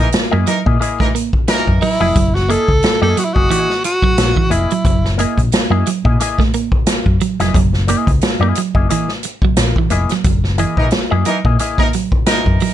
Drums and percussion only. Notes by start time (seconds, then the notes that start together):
0.12 snare, closed hi-hat
0.47 closed hi-hat
0.66 kick
0.82 closed hi-hat
1.00 kick, snare
1.15 closed hi-hat
1.33 kick
1.48 snare, closed hi-hat
1.67 kick
1.82 open hi-hat
2.16 kick, closed hi-hat
2.35 snare
2.50 closed hi-hat
2.68 kick
2.83 snare, closed hi-hat
3.17 closed hi-hat
3.36 kick
3.51 closed hi-hat
3.70 snare
3.84 closed hi-hat
4.02 kick
4.18 snare, closed hi-hat
4.36 kick
4.51 closed hi-hat
4.71 closed hi-hat
4.85 kick, closed hi-hat
5.05 snare
5.19 closed hi-hat
5.38 kick, closed hi-hat
5.52 snare, closed hi-hat
5.86 closed hi-hat
6.05 kick
6.20 closed hi-hat
6.39 kick, snare
6.53 closed hi-hat
6.72 kick
6.87 snare, closed hi-hat
7.06 kick
7.21 closed hi-hat
7.40 snare, closed hi-hat
7.54 kick, closed hi-hat
7.73 snare
7.88 closed hi-hat
8.07 kick, closed hi-hat
8.21 snare, closed hi-hat
8.55 closed hi-hat
8.75 kick
8.90 closed hi-hat
9.08 snare
9.23 closed hi-hat
9.42 kick
9.57 snare, closed hi-hat
9.76 kick
9.90 closed hi-hat
10.09 snare, closed hi-hat
10.24 kick, closed hi-hat
10.44 snare
10.58 closed hi-hat
10.77 kick
10.91 snare, closed hi-hat
11.25 closed hi-hat
11.45 kick
11.59 closed hi-hat
11.77 kick, snare
11.93 closed hi-hat
12.12 kick
12.26 snare, closed hi-hat
12.46 kick
12.60 open hi-hat